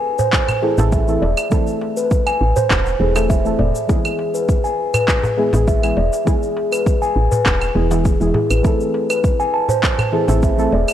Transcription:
Already playing: synth stab E3 A3 C4 E4 A4
0.19 steel tongue drum C5, darbuka dum, shaker
0.33 kick, clap, shaker
0.48 darbuka dum, claves, shaker
0.61 synth stab E3 A3 C4 E4 A4, steel tongue drum G#4, darbuka tek
0.77 fm bass A1, synth stab E3 A3 C4 E4 A4, darbuka ka, darbuka dum, shaker
0.92 steel tongue drum E5, kick, shaker
1.07 synth stab E3 A3 C4 E4 A4, shaker
1.22 fm bass E1, steel tongue drum D5, darbuka ka
1.37 darbuka tek, claves, shaker
1.50 synth stab E3 A3 C4 E4 A4, steel tongue drum A4, kick, shaker
1.67 shaker
1.81 darbuka ka
1.97 steel tongue drum B4, shaker
2.11 kick, shaker
2.26 steel tongue drum G#5, claves, shaker
2.41 fm bass A1
2.56 steel tongue drum C5, darbuka tek, darbuka dum, shaker
2.70 fm bass E1, kick, clap, shaker
2.86 shaker
2.99 fm bass E1, synth stab E3 A3 C4 E4 A4, steel tongue drum G#4, darbuka tek
3.15 synth stab E3 A3 C4 E4 A4, darbuka ka, darbuka tek, claves, shaker
3.30 steel tongue drum E5, kick, shaker
3.44 synth stab E3 A3 C4 E4 A4, shaker
3.59 fm bass E1, steel tongue drum D5, darbuka dum
3.75 shaker
3.87 synth stab E3 G#3 B3 E4 G#4, steel tongue drum G#4, kick, shaker
4.05 claves, shaker
4.19 darbuka ka
4.34 steel tongue drum B4, shaker
4.49 kick, shaker
4.64 steel tongue drum G#5, shaker
4.94 steel tongue drum B4, darbuka dum, claves, shaker
5.08 kick, clap, shaker
5.23 darbuka dum, shaker
5.37 synth stab E3 G#3 B3 E4 G#4, steel tongue drum G#4, darbuka tek
5.52 fm bass A1, synth stab E3 G#3 B3 E4 G#4, darbuka ka, darbuka dum, shaker
5.68 steel tongue drum E5, kick, shaker
5.82 synth stab E3 G#3 B3 E4 G#4, claves, shaker
5.97 fm bass E1, steel tongue drum D5, darbuka ka
6.13 darbuka tek, shaker
6.25 synth stab E3 G#3 B3 E4, steel tongue drum G#4, kick, shaker
6.29 synth stab G#4
6.43 shaker
6.57 darbuka ka
6.72 steel tongue drum B4, claves, shaker
6.86 kick, shaker
7.02 steel tongue drum G#5, shaker
7.16 fm bass A1
7.31 steel tongue drum B4, darbuka tek, darbuka dum, shaker
7.46 fm bass E1, kick, clap, shaker
7.61 claves, shaker
7.74 fm bass E1, synth stab E3 G#3 B3 E4 G#4, steel tongue drum G#4, darbuka tek
7.90 synth stab E3 G#3 B3 E4 G#4, darbuka ka, darbuka tek, shaker
8.05 kick, shaker
8.20 fm bass E1, synth stab E3 G#3 B3 E4 G#4, steel tongue drum E4, shaker
8.34 steel tongue drum G#4, darbuka dum
8.50 fm bass A1, steel tongue drum B4, claves, shaker
8.63 synth stab E3 A3 C4 E4, steel tongue drum A4, kick, shaker
8.67 synth stab A4
8.80 shaker
8.94 darbuka ka
9.10 steel tongue drum B4, claves, shaker
9.24 kick, shaker
9.40 steel tongue drum G#5, shaker
9.54 steel tongue drum A5
9.69 steel tongue drum C5, darbuka dum, shaker
9.83 kick, clap, shaker
9.99 darbuka dum, claves, shaker
10.12 synth stab E3 A3 C4 E4 A4, steel tongue drum G#4, darbuka tek
10.27 fm bass A1, synth stab E3 A3 C4 E4 A4, darbuka ka, darbuka dum, shaker
10.43 steel tongue drum E5, kick, shaker
10.57 synth stab E3 A3 C4 E4 A4, shaker
10.72 fm bass E1, steel tongue drum D5, darbuka ka
10.88 darbuka tek, claves, shaker

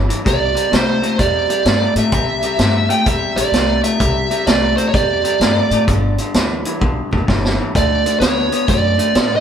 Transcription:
0.08 clean electric guitar G2 E3, closed hi-hat
0.25 upright bass C2, clean electric guitar C3 G3, lead electric guitar D5, kick, closed hi-hat
0.55 clean electric guitar C3 G3, closed hi-hat
0.71 upright bass C2, clean electric guitar C3 A3, lead electric guitar C5, snare, closed hi-hat
1.02 clean electric guitar C3 A3, closed hi-hat
1.19 upright bass E2, clean electric guitar C3 G3, lead electric guitar D5, kick, closed hi-hat
1.49 clean electric guitar C3 G3, closed hi-hat
1.65 upright bass G2, clean electric guitar C3 A3, snare, closed hi-hat
1.95 upright bass A2, clean electric guitar C3 A3, lead electric guitar E5, closed hi-hat
2.12 upright bass C2, clean electric guitar C3 G3, kick, closed hi-hat
2.42 clean electric guitar C3 G3, closed hi-hat
2.59 upright bass G2, clean electric guitar C3 A3, snare, closed hi-hat
2.89 clean electric guitar C3 A3, lead electric guitar G5, closed hi-hat
3.06 upright bass E2, clean electric guitar C3 G3, lead electric guitar E5, kick, closed hi-hat
3.36 upright bass A#1, clean electric guitar C3 G3, lead electric guitar D5, closed hi-hat
3.52 upright bass C2, clean electric guitar C3 A3, snare, closed hi-hat
3.83 clean electric guitar C3 A3, lead electric guitar E5, closed hi-hat
4.00 upright bass C2, clean electric guitar C3 G3, kick, closed hi-hat
4.31 clean electric guitar C3 G3, closed hi-hat
4.47 upright bass C2, clean electric guitar C3 A3, lead electric guitar D5, snare, closed hi-hat
4.77 clean electric guitar C3 A3, lead electric guitar C5, closed hi-hat
4.89 lead electric guitar C#5
4.93 upright bass E2, clean electric guitar C3 G3, lead electric guitar D5, kick, closed hi-hat
5.24 clean electric guitar C3 G3, closed hi-hat
5.40 upright bass G2, clean electric guitar C3 A3, snare, closed hi-hat
5.71 upright bass A2, clean electric guitar C3 A3, closed hi-hat
5.88 upright bass G1, clean electric guitar G2 D3, kick, closed hi-hat
6.18 clean electric guitar G2 D3, closed hi-hat
6.34 upright bass D2, clean electric guitar G2 E3, snare, closed hi-hat
6.65 clean electric guitar G2 E3, closed hi-hat
6.81 upright bass B1, clean electric guitar G2 D3, kick, high tom
7.11 upright bass F1, clean electric guitar G2 D3, kick
7.28 upright bass G1, clean electric guitar G2 E3, kick, snare
7.45 snare
7.60 clean electric guitar G2 E3
7.75 upright bass D2, clean electric guitar D3 A3, lead electric guitar D5, kick, closed hi-hat
8.06 clean electric guitar D3 A3, closed hi-hat
8.20 upright bass D2, clean electric guitar D3 B3, lead electric guitar C#5, snare, closed hi-hat
8.52 clean electric guitar D3 B3, closed hi-hat
8.68 upright bass F#2, clean electric guitar D3 A3, lead electric guitar D5, kick, closed hi-hat
8.98 clean electric guitar D3 A3, closed hi-hat
9.15 upright bass A2, clean electric guitar D3 B3, snare, closed hi-hat
9.36 lead electric guitar D#5

